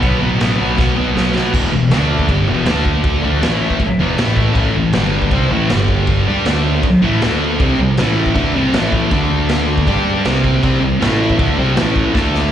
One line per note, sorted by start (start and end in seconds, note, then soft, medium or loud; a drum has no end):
0.00 0.21 B1 medium
0.00 0.19 B2 loud
0.00 0.20 F#3 loud
0.00 0.21 B3 loud
0.00 kick loud
0.00 crash medium
0.20 0.40 A1 loud
0.20 0.38 B2 medium
0.20 0.39 F#3 medium
0.20 0.39 B3 loud
0.39 0.59 A1 medium
0.39 0.58 B2 medium
0.39 0.58 F#3 medium
0.39 0.59 B3 loud
0.39 snare loud
0.39 crash medium
0.59 0.78 B1 medium
0.59 0.76 B2 medium
0.59 0.78 F#3 loud
0.59 0.78 B3 medium
0.77 0.96 B1 medium
0.77 0.95 B2 loud
0.77 0.96 F#3 loud
0.77 0.97 B3 loud
0.77 kick loud
0.77 snare medium
0.96 1.16 B1 medium
0.96 1.14 B2 medium
0.96 1.15 F#3 medium
0.96 1.16 B3 medium
1.16 1.34 B1 medium
1.16 1.33 B2 medium
1.16 1.34 F#3 medium
1.16 1.35 B3 loud
1.16 snare medium
1.34 1.52 B2 medium
1.34 1.53 B2 medium
1.34 1.53 F#3 medium
1.34 1.53 B3 medium
1.34 snare medium
1.53 1.71 E1 medium
1.53 1.71 E2 medium
1.53 1.72 B2 loud
1.53 1.73 E3 loud
1.53 kick loud
1.53 crash loud
1.53 crash medium
1.72 1.91 E1 medium
1.72 1.87 E2 medium
1.72 1.91 B2 medium
1.91 2.28 D2 loud
1.91 2.27 D3 medium
1.91 2.29 A3 medium
1.91 2.29 D4 medium
1.91 snare loud
1.91 crash medium
2.19 kick medium
2.28 2.47 G1 medium
2.28 2.47 G2 loud
2.28 2.47 D3 loud
2.28 2.48 G3 loud
2.28 kick loud
2.28 crash medium
2.48 2.66 E1 medium
2.48 2.67 E2 medium
2.48 2.66 B2 loud
2.48 2.67 E3 medium
2.66 3.20 D2 medium
2.66 3.21 D3 medium
2.66 3.23 A3 loud
2.66 3.23 D4 loud
2.66 snare loud
2.66 crash medium
2.85 kick medium
3.04 kick loud
3.04 crash medium
3.23 3.41 D2 loud
3.23 3.42 D3 medium
3.23 3.42 A3 medium
3.23 3.43 D4 loud
3.42 3.78 A1 loud
3.42 3.80 A2 medium
3.42 3.80 E3 loud
3.42 3.81 A3 loud
3.42 snare loud
3.42 crash medium
3.70 kick medium
3.80 muted fingered electric bass stroke soft
3.80 muted distorted electric guitar stroke medium
3.80 kick medium
3.80 crash medium
3.99 4.17 E1 medium
3.99 4.18 E2 loud
3.99 4.18 B2 medium
3.99 4.18 E3 loud
4.17 4.53 A1 loud
4.17 4.53 A2 medium
4.17 4.54 E3 loud
4.17 4.56 A3 loud
4.17 snare loud
4.17 crash medium
4.37 kick medium
4.55 4.74 A1 loud
4.55 4.74 A2 loud
4.55 4.75 E3 loud
4.55 4.75 A3 loud
4.55 kick loud
4.55 crash medium
4.75 4.93 A1 medium
4.75 4.91 A2 medium
4.75 4.91 E3 medium
4.93 5.30 G1 loud
4.93 5.32 G2 medium
4.93 5.31 D3 medium
4.93 5.31 G3 loud
4.93 snare loud
4.93 crash medium
5.22 kick medium
5.31 5.50 C2 medium
5.31 5.50 C3 loud
5.31 5.51 G3 loud
5.31 5.51 C4 loud
5.31 kick loud
5.31 crash medium
5.50 5.68 A1 loud
5.50 5.69 A2 medium
5.50 5.70 E3 loud
5.50 5.70 A3 loud
5.68 6.24 G1 loud
5.68 6.26 G2 medium
5.68 6.26 D3 loud
5.68 6.25 G3 loud
5.68 snare loud
5.68 crash medium
5.88 kick medium
6.07 kick loud
6.07 crash medium
6.26 6.46 G2 loud
6.26 6.45 G3 loud
6.26 6.46 D4 loud
6.26 6.46 G4 loud
6.45 6.81 D2 loud
6.45 6.83 D3 medium
6.45 6.84 A3 loud
6.45 6.84 D4 loud
6.45 snare loud
6.45 crash medium
6.83 muted fingered electric bass stroke soft
6.83 muted distorted electric guitar stroke medium
6.83 kick loud
6.83 crash medium
7.02 7.20 A1 loud
7.02 7.21 A2 medium
7.02 7.21 E3 medium
7.02 7.21 A3 loud
7.22 7.58 D2 medium
7.22 7.59 D3 medium
7.22 7.60 A3 loud
7.22 7.60 D4 loud
7.22 snare loud
7.22 crash medium
7.60 7.78 C2 medium
7.60 7.78 C3 loud
7.60 7.78 G3 loud
7.60 7.80 C4 loud
7.60 kick loud
7.60 crash medium
7.79 7.97 C2 medium
7.79 7.94 C3 medium
7.79 7.94 G3 medium
7.97 8.33 A1 loud
7.97 8.35 A2 medium
7.97 8.35 E3 loud
7.97 8.34 A3 loud
7.97 snare loud
7.97 crash medium
8.26 kick medium
8.35 8.53 D2 medium
8.35 8.54 D3 loud
8.35 8.54 A3 loud
8.35 8.54 D4 loud
8.35 kick loud
8.35 crash medium
8.55 8.73 C2 loud
8.55 8.73 C3 medium
8.55 8.74 G3 medium
8.55 8.74 C4 loud
8.73 9.09 A1 medium
8.73 9.11 A2 loud
8.73 9.11 E3 medium
8.73 9.11 A3 loud
8.73 snare loud
8.73 crash medium
8.92 kick medium
9.11 9.84 D2 loud
9.11 9.87 D3 loud
9.11 9.87 A3 medium
9.11 9.87 D4 loud
9.11 kick loud
9.11 crash medium
9.49 snare loud
9.49 crash medium
9.78 kick medium
9.87 10.23 G2 loud
9.87 10.25 G3 loud
9.87 10.25 D4 loud
9.87 10.26 G4 loud
9.87 kick loud
9.87 crash medium
10.25 10.61 C2 loud
10.25 10.61 C3 loud
10.25 10.62 G3 loud
10.25 10.63 C4 loud
10.25 snare loud
10.25 crash medium
10.44 kick medium
10.62 10.81 C2 medium
10.62 10.80 C3 medium
10.62 10.81 G3 loud
10.62 10.82 C4 loud
10.62 kick loud
10.62 crash medium
10.81 11.00 C2 medium
10.81 10.97 C3 medium
10.81 10.97 G3 medium
11.00 11.37 A1 loud
11.00 11.37 A2 medium
11.00 11.38 E3 loud
11.00 11.38 A3 loud
11.00 snare loud
11.00 crash medium
11.30 kick medium
11.37 11.57 D2 loud
11.37 11.57 D3 loud
11.37 11.57 A3 loud
11.37 11.58 D4 loud
11.37 kick loud
11.37 crash medium
11.58 11.76 C2 medium
11.58 11.76 C3 medium
11.58 11.77 G3 loud
11.58 11.77 C4 loud
11.76 12.13 A1 loud
11.76 12.13 A2 loud
11.76 12.14 E3 loud
11.76 12.13 A3 loud
11.76 snare loud
11.76 crash medium
11.96 kick medium
12.13 12.52 D2 loud
12.13 12.52 D3 loud
12.13 12.52 A3 loud
12.13 12.52 D4 loud
12.13 kick loud
12.13 snare medium
12.34 snare medium